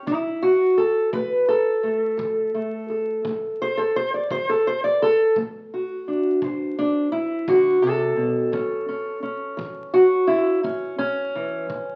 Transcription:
0.07 D3 E4, kick
0.42 F#4
0.78 A4
1.13 A3 B4, kick
1.49 A4
1.83 A3
2.17 D3, kick
2.54 A3
2.90 A4
3.25 A3, kick
3.62 C5
3.77 A4
3.96 C5
4.14 D5
4.31 D3 C5, kick
4.49 A4
4.67 C5
4.84 D5
5.02 A4
5.36 A3, kick
5.74 F#4
6.08 D4
6.42 D3 C5, kick
6.79 D4
7.12 E4
7.48 D3 F#4, kick
7.82 C3 A4
8.16 B2
8.52 A2 C#4, kick
8.88 C#4
9.23 C#4
9.57 E3, kick
9.94 F#4
10.27 E4
10.63 A2 C#4, kick
10.98 C#4
11.35 E3
11.70 E3, kick

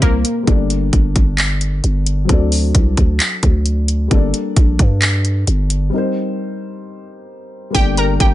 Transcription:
Already playing: G3 C4 D#4 A#4 C5
0.02 C2 A#3 A#4, kick, closed hi-hat
0.25 closed hi-hat
0.43 G3 A#3
0.47 G1 D4 A4, kick, closed hi-hat
0.51 D5
0.70 closed hi-hat
0.93 G1, kick, closed hi-hat
1.16 G1, kick, closed hi-hat
1.38 clap, closed hi-hat
1.61 closed hi-hat
1.84 G1, closed hi-hat
2.06 closed hi-hat
2.25 F#3 C4
2.29 D2 D4 A4, kick, closed hi-hat
2.33 D5
2.52 open hi-hat
2.75 C2, kick, closed hi-hat
2.97 D2, kick, closed hi-hat
3.20 clap, closed hi-hat
3.43 D2, kick, closed hi-hat
3.66 closed hi-hat
3.88 closed hi-hat
4.08 G1 G3 A#3, kick, closed hi-hat
4.12 D4 A4
4.16 D5
4.34 closed hi-hat
4.57 A#1, kick, closed hi-hat
4.79 G2, kick, closed hi-hat
5.02 clap, closed hi-hat
5.25 closed hi-hat
5.47 G1, closed hi-hat
5.70 closed hi-hat
5.90 G3 C4
5.94 D#4 A#4
5.98 C5
7.70 G3 A#3
7.74 G1 D4 G4 G5, kick, closed hi-hat
7.79 D5
7.97 A#4 A#5, closed hi-hat
8.20 G1 G4 G5, kick, closed hi-hat

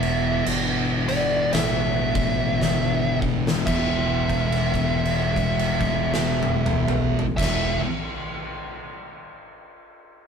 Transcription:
Already playing: E1 E2 B2 E3 E5
0.03 crash
0.46 G1, crash
1.08 E2 B2 E3 D5, crash
1.53 A1 E5, snare, crash
2.15 kick, crash
2.59 G1, snare
3.22 kick
3.47 snare
3.65 E1 E2 B2 E3 E5, kick, crash
4.29 kick, crash
4.52 crash
4.74 kick, crash
5.05 crash
5.36 kick, crash
5.59 crash
5.80 kick, crash
6.14 snare
6.43 high tom
6.66 mid tom
6.88 mid tom
7.19 floor tom
7.36 E1 E2 B2 E3 E5, kick, crash
7.41 snare

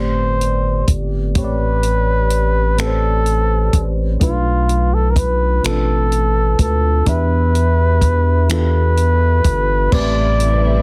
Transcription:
Already playing: G1 A2 A3 C4 G4 B4 C5 D5
0.41 closed hi-hat
0.88 G1, kick, closed hi-hat
1.35 A1 A2 A3 C4 G4 B4 C#5, kick, closed hi-hat
1.44 D5
1.83 closed hi-hat
2.30 closed hi-hat
2.77 A2 A3 C4 G4 A4 B4, finger snap, closed hi-hat
2.87 C5
3.26 closed hi-hat
3.73 A1, kick, closed hi-hat
4.19 B1 B2 A3 D4 F4 B4, kick, closed hi-hat
4.69 closed hi-hat
4.94 A4
5.10 A#4
5.16 B4, kick, closed hi-hat
5.63 A1 B2 A3 C4 F4 A4 B4, finger snap, closed hi-hat
5.71 D4
6.12 closed hi-hat
6.59 D2 A4, kick, closed hi-hat
7.05 E2 E3 B3 D4 G4 B4 E5, kick, closed hi-hat
7.55 closed hi-hat
8.01 kick, closed hi-hat
8.49 E3 B3 D4 F4 A4 B4, finger snap, closed hi-hat
8.58 G4
8.97 closed hi-hat
9.44 G1, kick, closed hi-hat
9.91 A1 A2 C3 G3 A3 C4 E4 G4 B4 D5, kick, crash
10.40 closed hi-hat

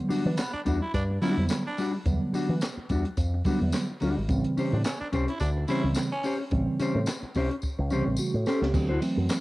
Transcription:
Already playing: D3 F#3 G3 B3
0.09 G3 D4 F#4, muted fingered electric bass stroke, open hi-hat, tambourine
0.24 E3 D4
0.37 B3, muted clean electric guitar stroke, snare, clap, closed hi-hat, tambourine
0.53 D4, muted fingered electric bass stroke, muted clean electric guitar stroke
0.65 E2 G3 D4 F#4, kick, closed hi-hat, tambourine
0.81 E4, muted clean electric guitar stroke
0.94 G2 D4, kick, closed hi-hat, tambourine
1.10 muted clean electric guitar stroke
1.21 D3 F#3 G3 B3 D4 E4 F#4, open hi-hat, tambourine
1.37 F2, muted clean electric guitar stroke
1.49 snare, clap, closed hi-hat, tambourine
1.66 D4, muted clean electric guitar stroke
1.77 G3 D4 F#4, open hi-hat, tambourine
1.94 muted clean electric guitar stroke
2.05 E2 D3 F#3 G3 B3, kick, closed hi-hat, tambourine
2.33 G3 D4 F#4, muted fingered electric bass stroke, open hi-hat, tambourine
2.49 E3
2.61 muted clean electric guitar stroke, snare, clap, closed hi-hat, tambourine
2.77 muted fingered electric bass stroke, muted clean electric guitar stroke
2.89 E2 G3 D4 F#4, kick, closed hi-hat, tambourine
3.05 muted clean electric guitar stroke, closed hi-hat
3.17 F2, kick, closed hi-hat, tambourine
3.34 muted clean electric guitar stroke
3.45 D3 F#3 G3 B3 D4 F#4, kick, open hi-hat, tambourine
3.61 E2, muted clean electric guitar stroke
3.72 snare, clap, closed hi-hat, tambourine
3.90 muted clean electric guitar stroke
4.00 D2 G3 D4 F#4, open hi-hat, tambourine
4.17 G#1, muted clean electric guitar stroke
4.29 A1 C#3 E3 G3 C4, kick, closed hi-hat, tambourine
4.44 closed hi-hat
4.57 C#4 G4 C5, muted fingered electric bass stroke, open hi-hat, tambourine
4.73 A2 D4
4.84 C#4, muted clean electric guitar stroke, snare, clap, closed hi-hat, tambourine
5.01 D4, muted clean electric guitar stroke, muted fingered electric bass stroke
5.13 C2 C#4 G4 C5, kick, closed hi-hat, tambourine
5.28 E4, muted clean electric guitar stroke, closed hi-hat
5.40 D2 D4, kick, closed hi-hat, tambourine
5.58 muted clean electric guitar stroke
5.68 C#3 E3 G3 C4 C#4 E4 G4 C5, open hi-hat, tambourine
5.84 C#2, muted clean electric guitar stroke
5.94 snare, clap, closed hi-hat, tambourine
6.12 C#4, muted clean electric guitar stroke
6.23 C#4 G4 C5, open hi-hat, tambourine
6.40 muted clean electric guitar stroke
6.51 A1 C#3 E3 G3 C4, kick, closed hi-hat
6.79 C#4 G4 C5, muted fingered electric bass stroke, closed hi-hat, tambourine
6.95 A2
7.06 muted clean electric guitar stroke, snare, clap, closed hi-hat, tambourine
7.23 muted fingered electric bass stroke, muted clean electric guitar stroke
7.35 C2 C#4 G4 C5, kick, open hi-hat, tambourine
7.51 muted clean electric guitar stroke, closed hi-hat
7.62 kick, tambourine
7.79 C#2, muted clean electric guitar stroke
7.90 C2 C#3 E3 G3 C4 C#4 G4 C5, tambourine
8.06 A1, muted clean electric guitar stroke
8.17 A3 F#4, tambourine
8.34 A2, muted clean electric guitar stroke
8.46 C#4 G4 A4 C5, snare, tambourine
8.62 C#2 B3 G4, muted clean electric guitar stroke, snare
8.74 D2 E3 F#3 A3 C4, muted clean electric guitar stroke, kick, crash, tambourine
8.89 E4 F#4 C5
9.01 E3 F#3 A3 C4, muted clean electric guitar stroke, open hi-hat, ride, tambourine
9.16 F#2, muted clean electric guitar stroke
9.29 muted clean electric guitar stroke, snare, clap, hi-hat pedal, ride, tambourine

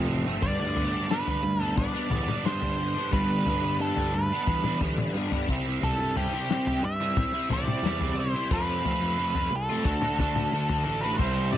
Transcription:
Already playing: F2 C3 F3 A3 C4
0.08 A1
0.25 G1 F3 A3 C4
0.42 G2 D3 G3 B3 D4 D5, kick, floor tom
0.59 D2
0.76 D3 G3 B3 D4, floor tom
0.92 G3 B3 D4
1.09 G2 D3 G3 B3 D4 B4, snare
1.26 G3 B3 D4, floor tom
1.43 D2, muted overdriven electric guitar stroke
1.60 G3 B3 D4 A4
1.78 D5, kick, floor tom, mid tom
1.94 G3 B3 D4
2.10 E2 D3 G3 B3 D4, floor tom, mid tom
2.28 mid tom
2.44 G2 D3 G3 B3 D4 C5, snare
2.61 G3 B3 D4, floor tom
2.96 G3 B3 D4
3.11 G2 D3 G3 B3 D4 B4, kick, floor tom
3.46 D3 G3 B3 D4, floor tom
3.62 G2 B3 D4
3.66 G3
3.80 G2 D3 G3 B3 D4 A4
3.97 G3 B3 D4, floor tom
4.13 D2 B4, muted overdriven electric guitar stroke
4.32 G3 B3 D4
4.47 E3, kick, floor tom
4.64 G3 B3 D4, mid tom
4.81 D3 G3 B3 D4, kick, floor tom
4.98 mid tom
5.14 G2 D3 G3 B3
5.18 D4
5.32 G3 B3 D4, floor tom
5.49 C2 C3 G3 C4 E4, kick
5.65 G3 C4 E4
5.81 C2 C3 G3 C4 A4, floor tom
5.85 E4
5.98 G2
6.15 C3 G3 C4 E4 G4, floor tom
6.32 G3 C4 E4
6.50 C3 G3 C4 E4, snare
6.66 G3 C4 E4, floor tom
6.82 G2 E5, muted overdriven electric guitar stroke
7.01 G3 C4 E4
7.17 kick, floor tom, mid tom
7.33 G3 C4 E4
7.49 A1 C3 G3 C4 E4, floor tom, mid tom
7.53 D5
7.68 mid tom
7.83 E2 C3 G3 C4 E4, snare
7.99 G3 C4 E4, floor tom
8.20 C5
8.34 G3 C4 E4
8.51 F2 F3 A3 C4 F4 B4, kick, floor tom
8.85 F3 A3 C4 F4, floor tom
9.01 F2 A3 C4 F4
9.18 F3 A3 C4 F4
9.35 A3 C4 F4, floor tom
9.51 C2, muted overdriven electric guitar stroke
9.56 A4
9.70 A3 C4 F4
9.84 D2 D3 A3 D4 F#4, kick, floor tom
10.02 A3 D4 F#4, mid tom
10.19 D3 A3 D4 F#4, kick, floor tom
10.36 mid tom
10.52 D2 D3 A3 D4 F#4
10.69 A3 D4 F#4, floor tom
10.85 A1 A4
11.01 D4 F#4 B4
11.06 A3
11.18 C2 C3 G3 C5, kick, floor tom, crash
11.22 C4 E4
11.53 C3 G3 D5, mid tom

